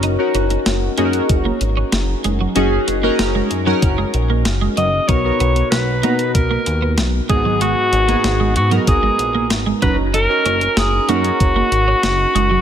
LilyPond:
<<
  \new Staff \with { instrumentName = "Alto saxophone" } { \time 4/4 \key fis \major \tempo 4 = 95 r1 | r2. r8 dis''8 | cis''4 b'4 ais'4 r8 gis'8 | fis'4. fis'8 gis'4 r8 b'8 |
ais'4 gis'8 fis'2~ fis'8 | }
  \new Staff \with { instrumentName = "Synth keys" } { \time 4/4 \key fis \major << { r16 <cis' dis' fis' ais'>4 r16 <cis' dis' fis' gis' ais'>4. r4 | <cis' dis' fis' gis'>8 r16 <cis' dis' fis' ais'>8. r16 <cis' dis' fis' ais'>4. r8. | <b dis' fis' ais'>16 <b dis' fis' ais'>4 r16 <b dis' fis' ais''>4. r8 <b dis' fis' gis'>8~ | <b dis' fis' gis'>8 r16 <b dis' fis' gis'>8. r16 <b dis' fis' ais'>4. r16 <cis' dis' fis' ais''>8 |
r16 <cis' dis' fis' ais'>4 r16 <cis' dis' fis' gis' ais'>4. r4 | } \\ { r1 | r1 | b,4. r2 gis,8~ | gis,4 r2. |
r1 | } >> }
  \new Staff \with { instrumentName = "Clean electric guitar" } { \time 4/4 \key fis \major dis'16 r16 cis'16 r8. ais16 r8 ais16 r16 cis'16 r8 gis16 fis16 | fis16 r8 ais16 r16 gis16 r16 fis16 r16 gis16 r16 ais16 r16 gis16 fis16 r16 | dis'16 r16 b16 r8. ais16 r8 ais16 r16 b16 r8 gis16 fis16 | gis16 r8 ais16 r16 gis16 r16 fis16 r16 gis16 r16 ais16 r16 gis16 fis16 r16 |
dis'16 r16 cis'16 r8. ais16 r8 ais16 r16 cis'16 r8 gis16 fis16 | }
  \new Staff \with { instrumentName = "Analog synth bass" } { \clef bass \time 4/4 \key fis \major fis,,8 fis,,8 fis,,8 fis,8 fis,,8 gis,,8 fis,,8 fis,,8 | fis,,8 fis,,8 fis,,8 fis,8 fis,,8 ais,,8 fis,,8 fis,,8 | b,,8 b,,8 b,,8 b,8 b,,8 dis,8 b,,8 gis,,8~ | gis,,8 gis,,8 gis,,8 gis,8 gis,,8 ais,,8 gis,,8 fis,,8~ |
fis,,8 fis,,8 fis,,8 fis,8 fis,,8 gis,,8 fis,,8 fis,,8 | }
  \new DrumStaff \with { instrumentName = "Drums" } \drummode { \time 4/4 hh8 hh16 hh16 <hh sn>8 hh16 hh16 <hh bd>8 hh8 <hh sn>8 hh8 | hh8 hh8 <hh sn>8 hh8 <hh bd>8 hh8 <hh sn>8 hh8 | <hh bd>8 hh16 hh16 <hh sn>8 hh16 hh16 <hh bd>8 hh8 <hh sn>8 <hh bd>8 | hh8 hh16 hh16 <hh sn>8 hh16 hh16 <hh bd>8 hh8 <hh sn>8 <hh bd>8 |
hh8 hh16 hh16 <hh sn>8 hh16 hh16 <hh bd>8 hh8 <hh sn>8 hh8 | }
>>